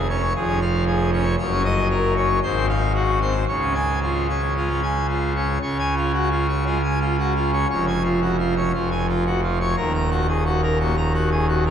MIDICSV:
0, 0, Header, 1, 2, 480
1, 0, Start_track
1, 0, Key_signature, -5, "major"
1, 0, Tempo, 518583
1, 1288, Time_signature, 4, 2, 24, 8
1, 2735, Tempo, 533333
1, 5135, Tempo, 518135
1, 10769, End_track
2, 0, Start_track
2, 0, Title_t, "Pipe organ"
2, 0, Program_c, 0, 19
2, 0, Note_on_c, 0, 29, 79
2, 0, Note_on_c, 0, 41, 77
2, 90, Note_on_c, 0, 73, 74
2, 91, Note_on_c, 0, 61, 64
2, 200, Note_off_c, 0, 61, 0
2, 306, Note_off_c, 0, 73, 0
2, 309, Note_off_c, 0, 29, 0
2, 309, Note_off_c, 0, 41, 0
2, 327, Note_on_c, 0, 29, 73
2, 327, Note_on_c, 0, 41, 71
2, 327, Note_on_c, 0, 68, 73
2, 447, Note_on_c, 0, 61, 62
2, 543, Note_off_c, 0, 68, 0
2, 556, Note_off_c, 0, 61, 0
2, 568, Note_on_c, 0, 77, 74
2, 782, Note_off_c, 0, 77, 0
2, 805, Note_on_c, 0, 68, 76
2, 1020, Note_off_c, 0, 68, 0
2, 1047, Note_on_c, 0, 61, 68
2, 1047, Note_on_c, 0, 73, 79
2, 1154, Note_off_c, 0, 61, 0
2, 1251, Note_off_c, 0, 73, 0
2, 1255, Note_off_c, 0, 29, 0
2, 1255, Note_off_c, 0, 41, 0
2, 1280, Note_on_c, 0, 73, 77
2, 1281, Note_on_c, 0, 30, 87
2, 1282, Note_on_c, 0, 42, 92
2, 1404, Note_on_c, 0, 61, 69
2, 1498, Note_off_c, 0, 73, 0
2, 1513, Note_off_c, 0, 61, 0
2, 1522, Note_on_c, 0, 75, 102
2, 1739, Note_off_c, 0, 75, 0
2, 1765, Note_on_c, 0, 70, 73
2, 1982, Note_off_c, 0, 70, 0
2, 2006, Note_on_c, 0, 73, 78
2, 2007, Note_on_c, 0, 61, 72
2, 2115, Note_off_c, 0, 61, 0
2, 2212, Note_off_c, 0, 73, 0
2, 2218, Note_off_c, 0, 30, 0
2, 2219, Note_off_c, 0, 42, 0
2, 2246, Note_on_c, 0, 72, 69
2, 2247, Note_on_c, 0, 32, 87
2, 2247, Note_on_c, 0, 44, 82
2, 2369, Note_on_c, 0, 60, 68
2, 2464, Note_off_c, 0, 72, 0
2, 2478, Note_off_c, 0, 60, 0
2, 2489, Note_on_c, 0, 77, 90
2, 2708, Note_off_c, 0, 77, 0
2, 2733, Note_on_c, 0, 66, 76
2, 2948, Note_off_c, 0, 66, 0
2, 2970, Note_on_c, 0, 60, 60
2, 2970, Note_on_c, 0, 72, 61
2, 3080, Note_off_c, 0, 60, 0
2, 3177, Note_off_c, 0, 72, 0
2, 3186, Note_off_c, 0, 44, 0
2, 3187, Note_off_c, 0, 32, 0
2, 3209, Note_on_c, 0, 73, 68
2, 3210, Note_on_c, 0, 49, 73
2, 3211, Note_on_c, 0, 37, 73
2, 3330, Note_on_c, 0, 61, 51
2, 3429, Note_off_c, 0, 73, 0
2, 3441, Note_off_c, 0, 61, 0
2, 3449, Note_on_c, 0, 80, 78
2, 3669, Note_off_c, 0, 80, 0
2, 3703, Note_on_c, 0, 65, 56
2, 3918, Note_off_c, 0, 65, 0
2, 3940, Note_on_c, 0, 61, 56
2, 3942, Note_on_c, 0, 73, 56
2, 4049, Note_off_c, 0, 61, 0
2, 4157, Note_off_c, 0, 73, 0
2, 4185, Note_on_c, 0, 56, 48
2, 4186, Note_on_c, 0, 65, 56
2, 4292, Note_off_c, 0, 56, 0
2, 4307, Note_on_c, 0, 61, 50
2, 4399, Note_off_c, 0, 65, 0
2, 4412, Note_off_c, 0, 61, 0
2, 4420, Note_on_c, 0, 80, 56
2, 4634, Note_off_c, 0, 80, 0
2, 4664, Note_on_c, 0, 65, 58
2, 4875, Note_off_c, 0, 65, 0
2, 4897, Note_on_c, 0, 61, 47
2, 4900, Note_on_c, 0, 73, 53
2, 5004, Note_off_c, 0, 61, 0
2, 5096, Note_off_c, 0, 37, 0
2, 5096, Note_off_c, 0, 49, 0
2, 5100, Note_off_c, 0, 73, 0
2, 5132, Note_on_c, 0, 49, 78
2, 5132, Note_on_c, 0, 73, 63
2, 5135, Note_on_c, 0, 37, 75
2, 5277, Note_off_c, 0, 73, 0
2, 5291, Note_on_c, 0, 80, 74
2, 5437, Note_off_c, 0, 80, 0
2, 5453, Note_on_c, 0, 65, 62
2, 5598, Note_off_c, 0, 65, 0
2, 5616, Note_on_c, 0, 66, 57
2, 5753, Note_off_c, 0, 66, 0
2, 5776, Note_on_c, 0, 65, 64
2, 5920, Note_off_c, 0, 65, 0
2, 5935, Note_on_c, 0, 73, 65
2, 6080, Note_off_c, 0, 73, 0
2, 6095, Note_on_c, 0, 65, 66
2, 6096, Note_on_c, 0, 56, 58
2, 6205, Note_off_c, 0, 56, 0
2, 6241, Note_off_c, 0, 65, 0
2, 6261, Note_on_c, 0, 80, 62
2, 6404, Note_off_c, 0, 80, 0
2, 6423, Note_on_c, 0, 65, 64
2, 6565, Note_off_c, 0, 65, 0
2, 6590, Note_on_c, 0, 66, 54
2, 6722, Note_off_c, 0, 66, 0
2, 6748, Note_on_c, 0, 65, 66
2, 6887, Note_off_c, 0, 65, 0
2, 6901, Note_on_c, 0, 73, 60
2, 7021, Note_off_c, 0, 49, 0
2, 7022, Note_off_c, 0, 37, 0
2, 7036, Note_off_c, 0, 73, 0
2, 7059, Note_on_c, 0, 73, 67
2, 7061, Note_on_c, 0, 41, 71
2, 7062, Note_on_c, 0, 29, 80
2, 7201, Note_off_c, 0, 73, 0
2, 7223, Note_on_c, 0, 80, 75
2, 7364, Note_off_c, 0, 80, 0
2, 7382, Note_on_c, 0, 65, 58
2, 7523, Note_off_c, 0, 65, 0
2, 7541, Note_on_c, 0, 66, 59
2, 7676, Note_off_c, 0, 66, 0
2, 7705, Note_on_c, 0, 65, 62
2, 7845, Note_off_c, 0, 65, 0
2, 7863, Note_on_c, 0, 73, 68
2, 8005, Note_off_c, 0, 73, 0
2, 8007, Note_off_c, 0, 41, 0
2, 8009, Note_off_c, 0, 29, 0
2, 8025, Note_on_c, 0, 65, 63
2, 8026, Note_on_c, 0, 41, 63
2, 8028, Note_on_c, 0, 29, 60
2, 8166, Note_off_c, 0, 65, 0
2, 8184, Note_on_c, 0, 80, 60
2, 8326, Note_off_c, 0, 80, 0
2, 8346, Note_on_c, 0, 65, 63
2, 8487, Note_off_c, 0, 65, 0
2, 8509, Note_on_c, 0, 66, 58
2, 8642, Note_off_c, 0, 66, 0
2, 8665, Note_on_c, 0, 65, 65
2, 8806, Note_off_c, 0, 65, 0
2, 8829, Note_on_c, 0, 73, 67
2, 8956, Note_off_c, 0, 41, 0
2, 8957, Note_off_c, 0, 29, 0
2, 8962, Note_off_c, 0, 73, 0
2, 8976, Note_on_c, 0, 39, 77
2, 8977, Note_on_c, 0, 27, 78
2, 8977, Note_on_c, 0, 70, 65
2, 9122, Note_off_c, 0, 70, 0
2, 9138, Note_on_c, 0, 82, 87
2, 9282, Note_off_c, 0, 82, 0
2, 9294, Note_on_c, 0, 66, 65
2, 9440, Note_off_c, 0, 66, 0
2, 9456, Note_on_c, 0, 68, 61
2, 9593, Note_off_c, 0, 68, 0
2, 9612, Note_on_c, 0, 66, 67
2, 9757, Note_off_c, 0, 66, 0
2, 9776, Note_on_c, 0, 70, 69
2, 9919, Note_off_c, 0, 70, 0
2, 9935, Note_on_c, 0, 66, 68
2, 9937, Note_on_c, 0, 46, 62
2, 10044, Note_off_c, 0, 46, 0
2, 10079, Note_off_c, 0, 66, 0
2, 10091, Note_on_c, 0, 82, 65
2, 10236, Note_off_c, 0, 82, 0
2, 10248, Note_on_c, 0, 66, 66
2, 10394, Note_off_c, 0, 66, 0
2, 10409, Note_on_c, 0, 68, 60
2, 10547, Note_off_c, 0, 68, 0
2, 10569, Note_on_c, 0, 66, 70
2, 10714, Note_off_c, 0, 66, 0
2, 10732, Note_on_c, 0, 70, 71
2, 10769, Note_off_c, 0, 27, 0
2, 10769, Note_off_c, 0, 39, 0
2, 10769, Note_off_c, 0, 70, 0
2, 10769, End_track
0, 0, End_of_file